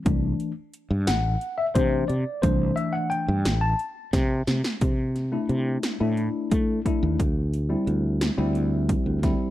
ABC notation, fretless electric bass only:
X:1
M:7/8
L:1/16
Q:1/4=88
K:Clyd
V:1 name="Fretless electric bass" clef=bass
C,,2 z3 G,, A,,,2 z2 C,2 C, z | C,,2 z3 G,, A,,,2 z2 C,2 C, z | C,4 C,2 z A,,2 z A,2 z _E,, | D,,4 D,,3 D,,4 D,,2 z |]